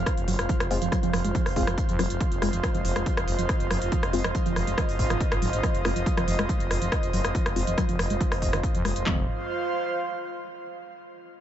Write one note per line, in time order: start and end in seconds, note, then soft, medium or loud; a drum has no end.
0.00 9.05 F4 medium
0.00 9.06 C5 medium
0.00 2.17 F5 medium
0.06 kick loud
0.06 cross-stick medium
0.06 closed hi-hat loud
0.17 0.25 F1 medium
0.17 closed hi-hat medium
0.28 0.36 F#1 loud
0.28 0.34 F#3 medium
0.28 open hi-hat loud
0.39 0.47 F1 medium
0.39 cross-stick medium
0.39 closed hi-hat medium
0.49 0.58 F3 medium
0.49 kick loud
0.49 closed hi-hat medium
0.60 0.68 F1 medium
0.60 cross-stick medium
0.60 closed hi-hat medium
0.71 0.79 F1 loud
0.71 0.76 G#3 loud
0.71 0.76 C4 medium
0.71 0.76 F4 loud
0.71 open hi-hat loud
0.82 0.90 F1 medium
0.82 0.87 F3 medium
0.82 closed hi-hat medium
0.92 0.98 F#3 medium
0.92 kick loud
0.92 cross-stick medium
0.92 closed hi-hat medium
1.03 1.11 F1 medium
1.03 1.11 F3 loud
1.03 closed hi-hat medium
1.13 1.22 F1 loud
1.13 1.22 F3 medium
1.13 cross-stick medium
1.13 open hi-hat loud
1.24 1.32 F1 medium
1.24 1.28 G#3 medium
1.24 closed hi-hat medium
1.35 1.44 F3 medium
1.35 kick loud
1.35 closed hi-hat medium
1.46 1.54 F1 medium
1.46 cross-stick medium
1.46 open hi-hat medium
1.56 1.65 F1 loud
1.56 1.62 G#3 loud
1.56 1.62 C4 medium
1.56 1.62 F4 loud
1.56 kick medium
1.56 open hi-hat loud
1.67 1.75 F1 medium
1.67 1.73 F3 medium
1.67 cross-stick medium
1.67 closed hi-hat soft
1.78 kick loud
1.78 closed hi-hat medium
1.89 1.97 F2 medium
1.89 closed hi-hat medium
1.99 2.08 F1 loud
1.99 2.05 F#3 medium
1.99 2.08 G#3 medium
1.99 2.08 C4 medium
1.99 2.08 F4 medium
1.99 cross-stick medium
1.99 open hi-hat loud
2.05 9.06 D#5 medium
2.10 2.18 F1 medium
2.10 closed hi-hat medium
2.21 2.29 F3 medium
2.21 kick loud
2.21 closed hi-hat medium
2.32 2.39 F1 medium
2.32 closed hi-hat soft
2.42 2.50 F1 loud
2.42 2.48 G#3 loud
2.42 2.48 C4 medium
2.42 2.48 F4 loud
2.42 cross-stick medium
2.42 open hi-hat loud
2.53 2.61 F1 medium
2.53 2.59 F3 medium
2.53 closed hi-hat medium
2.63 2.69 F#3 medium
2.63 kick loud
2.63 cross-stick medium
2.63 closed hi-hat medium
2.74 2.82 F1 medium
2.74 2.83 F3 loud
2.74 closed hi-hat medium
2.85 2.93 F1 loud
2.85 2.94 F3 medium
2.85 open hi-hat loud
2.96 3.04 F1 medium
2.96 2.99 G#3 medium
2.96 cross-stick medium
2.96 closed hi-hat medium
3.06 3.15 F3 medium
3.06 kick loud
3.06 closed hi-hat medium
3.17 3.25 F1 medium
3.17 cross-stick medium
3.17 closed hi-hat medium
3.28 3.36 F1 medium
3.28 open hi-hat loud
3.39 3.47 F1 medium
3.39 3.44 F3 medium
3.39 closed hi-hat medium
3.49 kick loud
3.49 cross-stick medium
3.49 closed hi-hat medium
3.60 3.68 F1 medium
3.60 closed hi-hat medium
3.70 3.79 F#1 loud
3.70 3.76 F#3 medium
3.70 cross-stick medium
3.70 open hi-hat loud
3.82 3.89 F1 medium
3.82 closed hi-hat medium
3.92 4.01 F3 medium
3.92 kick loud
3.92 closed hi-hat medium
4.03 4.11 F1 medium
4.03 cross-stick medium
4.03 closed hi-hat medium
4.13 4.22 F1 loud
4.13 4.19 G#3 loud
4.13 4.19 C4 medium
4.13 4.19 F4 loud
4.13 open hi-hat loud
4.24 4.32 F1 medium
4.24 4.30 F3 medium
4.24 cross-stick loud
4.24 closed hi-hat medium
4.35 4.41 F#3 medium
4.35 kick loud
4.35 closed hi-hat medium
4.46 4.54 F1 medium
4.46 4.54 F3 loud
4.46 closed hi-hat medium
4.56 4.65 F1 loud
4.56 4.65 F3 medium
4.56 cross-stick medium
4.56 open hi-hat loud
4.67 4.75 F1 medium
4.67 4.71 G#3 medium
4.67 closed hi-hat medium
4.78 4.87 F3 medium
4.78 kick loud
4.78 cross-stick loud
4.78 closed hi-hat medium
4.89 4.97 F#1 medium
4.89 open hi-hat medium
4.99 5.07 G#1 loud
4.99 kick medium
4.99 open hi-hat loud
5.10 5.18 G#1 medium
5.10 5.16 F3 medium
5.10 cross-stick medium
5.10 closed hi-hat soft
5.21 kick loud
5.21 closed hi-hat medium
5.31 5.39 G#1 medium
5.31 cross-stick loud
5.31 closed hi-hat medium
5.42 5.50 G#1 loud
5.42 5.48 F#3 medium
5.42 open hi-hat loud
5.53 5.61 G#1 medium
5.53 closed hi-hat medium
5.63 5.72 F3 medium
5.63 kick loud
5.63 cross-stick medium
5.63 closed hi-hat medium
5.74 5.82 F1 medium
5.74 closed hi-hat medium
5.85 5.93 F1 loud
5.85 5.90 G#3 loud
5.85 5.90 C4 medium
5.85 5.90 F4 loud
5.85 cross-stick loud
5.85 open hi-hat loud
5.96 6.04 F1 medium
5.96 6.01 F3 medium
5.96 closed hi-hat medium
6.06 6.12 F#3 medium
6.06 kick loud
6.06 closed hi-hat medium
6.17 6.25 F1 medium
6.17 6.26 F3 loud
6.17 cross-stick medium
6.17 closed hi-hat medium
6.28 6.36 F1 loud
6.28 6.37 F3 medium
6.28 open hi-hat loud
6.39 6.47 F1 medium
6.39 6.42 G#3 medium
6.39 cross-stick loud
6.39 closed hi-hat medium
6.49 6.58 F3 medium
6.49 kick loud
6.49 closed hi-hat medium
6.60 6.68 F1 medium
6.60 closed hi-hat medium
6.70 6.79 F1 loud
6.70 cross-stick medium
6.70 open hi-hat loud
6.82 6.89 F1 medium
6.82 6.87 F3 medium
6.82 closed hi-hat medium
6.92 kick loud
6.92 cross-stick loud
6.92 closed hi-hat medium
7.03 7.11 F1 medium
7.03 closed hi-hat medium
7.13 7.22 F#1 loud
7.13 7.19 F#3 medium
7.13 open hi-hat loud
7.24 7.32 F1 medium
7.24 cross-stick medium
7.24 closed hi-hat medium
7.35 7.44 F3 medium
7.35 kick loud
7.35 closed hi-hat medium
7.46 7.54 F1 medium
7.46 cross-stick medium
7.46 closed hi-hat medium
7.56 7.65 F1 loud
7.56 7.62 G#3 loud
7.56 7.62 C4 medium
7.56 7.62 F4 loud
7.56 open hi-hat loud
7.67 7.75 F1 medium
7.67 7.73 F3 medium
7.67 closed hi-hat medium
7.78 7.84 F#3 medium
7.78 kick loud
7.78 cross-stick medium
7.78 closed hi-hat medium
7.89 7.97 F1 medium
7.89 7.97 F3 loud
7.89 closed hi-hat medium
7.99 8.08 F1 loud
7.99 8.08 F3 medium
7.99 cross-stick loud
7.99 open hi-hat loud
8.10 8.18 F1 medium
8.10 8.13 G#3 medium
8.10 closed hi-hat medium
8.21 8.29 F3 medium
8.21 kick loud
8.21 closed hi-hat loud
8.32 8.39 F1 medium
8.32 cross-stick medium
8.32 open hi-hat medium
8.42 8.50 F1 medium
8.42 kick medium
8.42 open hi-hat loud
8.53 8.61 F1 medium
8.53 8.59 D#3 medium
8.53 cross-stick medium
8.53 closed hi-hat soft
8.63 kick loud
8.63 closed hi-hat medium
8.74 8.82 F2 medium
8.74 closed hi-hat medium
8.85 8.93 F1 loud
8.85 8.94 G#3 medium
8.85 8.91 G#3 medium
8.85 8.94 C4 medium
8.85 8.94 F4 medium
8.85 cross-stick medium
8.85 open hi-hat loud
8.96 9.04 F1 medium
8.96 closed hi-hat medium
9.06 9.26 F1 medium
9.06 9.26 F3 loud
9.06 9.22 G#3 medium
9.06 9.22 C4 medium
9.06 9.22 F4 loud
9.06 10.74 F4 medium
9.06 kick loud
9.06 clap medium
9.06 floor tom loud
9.13 10.74 C5 medium
9.20 10.74 F5 medium